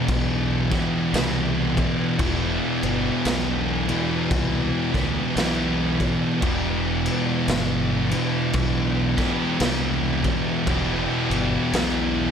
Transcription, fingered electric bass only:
0.08 B1
1.13 C2
2.19 E1
2.83 G1
3.26 B1
4.31 C2
4.94 D2
5.36 B1
6.43 E1
7.48 G1
8.54 B1
9.60 C2
10.67 E1
11.30 G1
11.73 B1

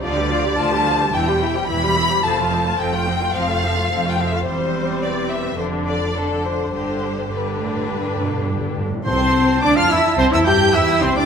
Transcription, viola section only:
0.03 F3 F4
0.16 G3 G4
0.30 F3 F4
0.44 G3 G4
0.57 F3 F4
0.72 G3 G4
0.86 F3 F4
1.00 G3 G4
1.14 E3 E4
1.28 G3 G4
1.42 E3 E4
1.55 G3 G4
1.70 E3 E4
1.83 G3 G4
1.96 E3 E4
2.11 G3 G4
2.24 F3 C4
2.37 A3 F4
2.51 F3 C4
2.66 A3 F4
2.79 F3 C4
2.92 A3 F4
3.07 F3 C4
3.21 A3 F4
3.35 F3 C4
3.48 A3 F4
3.63 F3 C4
3.77 A3 F4
3.91 F3 C4
4.06 A3 F4
4.18 F3 C4
4.33 A3 F4
4.46 G3 C4
5.58 D3 D4
6.15 D3 D4
6.73 D3 D4
7.32 D3 D4
9.06 C4
9.63 D4
9.77 F4
9.91 E4
10.18 C4
10.32 E4
10.45 G4
10.74 E4
11.03 C4
11.17 D4

